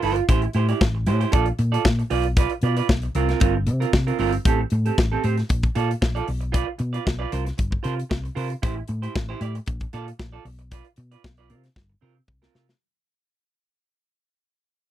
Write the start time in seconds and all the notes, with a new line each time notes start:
0.02 G1 F4 A#4 C5, open hi-hat
0.16 muted clean electric guitar stroke, closed hi-hat
0.29 A1 E4 G4 C5, kick, closed hi-hat
0.42 muted clean electric guitar stroke, closed hi-hat
0.53 A2 E4 G4 C5, closed hi-hat
0.69 E4 G4 D5, closed hi-hat
0.81 A1, muted clean electric guitar stroke, kick, snare
0.95 muted clean electric guitar stroke
1.06 A2 E4 G4 C5, closed hi-hat
1.20 E4 G4 C5, closed hi-hat
1.32 A#1 F4 A4 D5, kick, closed hi-hat
1.46 muted clean electric guitar stroke, closed hi-hat
1.59 A#2, muted clean electric guitar stroke, closed hi-hat
1.72 F4 A4 D5, closed hi-hat
1.85 A#2, kick, snare
1.99 muted clean electric guitar stroke, closed hi-hat
2.10 B1 F4 B4 D5, open hi-hat
2.24 muted clean electric guitar stroke, closed hi-hat
2.37 F4 B4 D5, kick, closed hi-hat
2.50 muted clean electric guitar stroke, closed hi-hat
2.62 B2 F4 B4 D5, closed hi-hat
2.77 F4 B4 D5, closed hi-hat
2.89 B1, kick, snare
3.02 muted clean electric guitar stroke, closed hi-hat
3.15 C2 C4 F4 A#4, closed hi-hat
3.29 C4 F4 A#4, snare, closed hi-hat
3.40 G1 C4 F4 A#4, kick, closed hi-hat
3.55 muted clean electric guitar stroke
3.66 C3, muted clean electric guitar stroke, closed hi-hat
3.80 C4 F4 A#4, closed hi-hat
3.93 C3, kick, snare
4.07 C4 F4 A#4, closed hi-hat
4.19 G1 C4 F4 A#4, open hi-hat
4.33 muted clean electric guitar stroke, closed hi-hat
4.45 A1 C4 G4 A4, kick, closed hi-hat
4.61 muted clean electric guitar stroke
4.70 A2, muted clean electric guitar stroke, closed hi-hat
4.86 C4 G4 A4, closed hi-hat
4.98 A1, muted clean electric guitar stroke, kick, snare
5.12 C4 G4 A4
5.24 A2 C4 G4 C5, closed hi-hat
5.37 muted clean electric guitar stroke, snare, closed hi-hat
5.49 A#1, muted clean electric guitar stroke, kick, closed hi-hat
5.63 muted clean electric guitar stroke, kick, closed hi-hat
5.75 A#2 F4 A4 D5, closed hi-hat
5.90 muted clean electric guitar stroke, closed hi-hat
6.02 A#1, muted clean electric guitar stroke, kick, snare
6.15 F4 A4 D5, closed hi-hat
6.27 B1, muted clean electric guitar stroke, open hi-hat
6.41 muted clean electric guitar stroke, closed hi-hat
6.52 F4 B4 D5, kick, closed hi-hat
6.67 muted clean electric guitar stroke
6.78 B2, muted clean electric guitar stroke, closed hi-hat
6.93 F4 B4 D5, closed hi-hat
7.05 B1, muted clean electric guitar stroke, kick, snare
7.19 F4 B4 D5
7.32 C2 F4 A#4 C5, closed hi-hat
7.45 muted clean electric guitar stroke, snare, closed hi-hat
7.58 G1, muted clean electric guitar stroke, kick, closed hi-hat
7.71 muted clean electric guitar stroke, kick
7.83 C3 F4 A#4 C5, closed hi-hat
7.96 muted clean electric guitar stroke, closed hi-hat
8.10 C2, muted clean electric guitar stroke, kick, snare
8.24 muted clean electric guitar stroke, closed hi-hat
8.35 C3 F4 A#4 C5, open hi-hat
8.50 muted clean electric guitar stroke, closed hi-hat
8.62 A1 E4 G4 C5, kick, closed hi-hat
8.76 muted clean electric guitar stroke
8.88 A2, muted clean electric guitar stroke, closed hi-hat
9.02 E4 G4 C5, closed hi-hat
9.16 A1, kick, snare
9.29 E4 G4 C5
9.41 A2 E4 G4 D5, closed hi-hat
9.55 muted clean electric guitar stroke, closed hi-hat
9.66 A#1, muted clean electric guitar stroke, kick, closed hi-hat
9.80 muted clean electric guitar stroke, kick, closed hi-hat
9.93 A#2 F4 A4 D5, closed hi-hat
10.07 muted clean electric guitar stroke, closed hi-hat
10.19 A#1, muted clean electric guitar stroke, kick, snare
10.32 F4 A4 D5
10.45 B1, muted clean electric guitar stroke, open hi-hat
10.59 muted clean electric guitar stroke, closed hi-hat
10.71 F4 B4 D5, kick, closed hi-hat
10.85 muted clean electric guitar stroke, closed hi-hat
10.96 B2, muted clean electric guitar stroke, closed hi-hat
11.12 F4 B4 D5, closed hi-hat
11.24 B1, kick, snare
11.37 F4 B4 D5, closed hi-hat
11.49 C3 C4 F4 A#4, closed hi-hat
11.64 muted clean electric guitar stroke, snare, closed hi-hat
11.76 G1, muted clean electric guitar stroke, kick, snare
11.90 muted clean electric guitar stroke
12.01 C3 C4 F4 A#4
12.15 muted clean electric guitar stroke
12.28 C2, muted clean electric guitar stroke, kick
12.42 C4 F4 A#4, snare
12.54 C3 C4 F4 A#4, snare
12.68 muted clean electric guitar stroke, snare